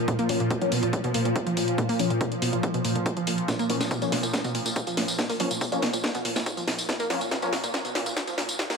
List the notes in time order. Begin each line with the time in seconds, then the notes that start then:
Already playing: A#2 F3
0.08 A#2, kick, closed hi-hat
0.19 A#3, closed hi-hat
0.29 F3 A#3 C#4, open hi-hat
0.40 A#2, closed hi-hat
0.51 B2, kick, closed hi-hat
0.61 F3 A#3 C#4, closed hi-hat
0.72 B2, open hi-hat
0.83 A#2, closed hi-hat
0.93 kick, closed hi-hat
1.04 B2, closed hi-hat
1.14 A#2, open hi-hat
1.25 A#2, closed hi-hat
1.36 kick, closed hi-hat
1.47 F3, closed hi-hat
1.57 A#2, open hi-hat
1.68 closed hi-hat
1.78 A#2, kick, closed hi-hat
1.89 A#3, open hi-hat
1.99 F3 A#3 C#4, open hi-hat
2.10 A#2, closed hi-hat
2.21 B2, kick, closed hi-hat
2.32 closed hi-hat
2.42 B2, open hi-hat
2.53 A#2, closed hi-hat
2.63 kick, closed hi-hat
2.74 B2, closed hi-hat
2.85 A#2, open hi-hat
2.95 A#2, closed hi-hat
3.06 kick, closed hi-hat
3.17 F3, closed hi-hat
3.27 A#2, open hi-hat
3.38 closed hi-hat
3.48 A#2, kick, snare, closed hi-hat, tambourine
3.59 A#3, closed hi-hat, tambourine
3.70 F3 A#3 C#4, open hi-hat
3.81 A#2, snare, closed hi-hat, tambourine
3.91 B2, kick, closed hi-hat, tambourine
4.02 F3 A#3 C#4, closed hi-hat, tambourine
4.12 B2, snare, open hi-hat
4.23 A#2, closed hi-hat, tambourine
4.33 kick, snare, closed hi-hat, tambourine
4.44 B2, closed hi-hat, tambourine
4.55 A#2, open hi-hat
4.66 A#2, closed hi-hat, tambourine
4.76 kick, closed hi-hat, tambourine
4.87 F3, closed hi-hat, tambourine
4.97 A#2, snare, open hi-hat
5.08 closed hi-hat, tambourine
5.19 A#2, kick, snare, closed hi-hat, tambourine
5.30 A#3, open hi-hat, tambourine
5.40 F3 A#3 C#4, open hi-hat
5.51 A#2, closed hi-hat, tambourine
5.61 B2, kick, closed hi-hat, tambourine
5.72 F3 A#3 C#4, closed hi-hat, tambourine
5.82 B2, snare, open hi-hat
5.93 A#2, closed hi-hat, tambourine
6.04 kick, snare, closed hi-hat, tambourine
6.15 B2, closed hi-hat, tambourine
6.25 A#2, open hi-hat
6.36 A#2, snare, closed hi-hat, tambourine
6.46 kick, closed hi-hat, tambourine
6.57 F3, closed hi-hat, tambourine
6.68 A#2, snare, open hi-hat
6.79 closed hi-hat, tambourine
6.89 A#2, kick, snare, closed hi-hat
7.00 A#3, closed hi-hat, tambourine
7.10 F3 A#3 C#4, snare, open hi-hat
7.21 A#2, closed hi-hat, tambourine
7.31 B2, kick, snare, closed hi-hat, tambourine
7.42 F3 A#3 C#4, closed hi-hat, tambourine
7.53 B2, snare, open hi-hat
7.64 A#2, closed hi-hat, tambourine
7.74 kick, snare, closed hi-hat, tambourine
7.85 B2, closed hi-hat, tambourine
7.95 A#2, snare, open hi-hat
8.06 A#2, closed hi-hat, tambourine
8.17 kick, snare, closed hi-hat, tambourine
8.27 F3, closed hi-hat, tambourine
8.38 A#2, snare, open hi-hat
8.49 closed hi-hat, tambourine
8.59 A#2, kick, snare, closed hi-hat
8.70 A#3, snare, open hi-hat, tambourine